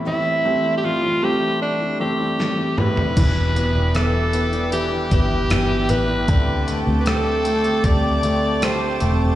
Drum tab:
CC |----------------|x---------------|----------------|
HH |----------------|x-x-x-xxx-x-x-x-|x-x-x-xxx-x-x-x-|
SD |------------o---|----r-------r---|----r-------r---|
T2 |--------------o-|----------------|----------------|
FT |---------------o|----------------|----------------|
BD |----------------|o---------o-----|o-------o-------|